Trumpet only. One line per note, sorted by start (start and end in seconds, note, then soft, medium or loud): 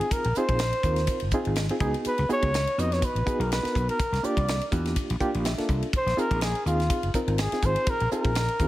0.00 0.14 G#4 medium
0.12 0.39 A#4 medium
0.37 1.34 C5 loud
2.07 2.29 B4 medium
2.33 2.81 C#5 loud
2.80 2.95 D#5 loud
2.93 3.06 C#5 medium
3.05 3.42 B4 medium
3.41 3.52 A#4 medium
3.52 3.87 B4 medium
3.90 4.27 A#4 medium
4.25 4.73 D5 medium
5.97 6.21 C5 loud
6.19 6.43 A#4 medium
6.43 6.65 G#4 medium
6.67 7.12 F4 medium
7.40 7.67 G#4 medium
7.66 7.91 C5 loud
7.90 8.12 A#4 loud
8.13 8.68 A#4 medium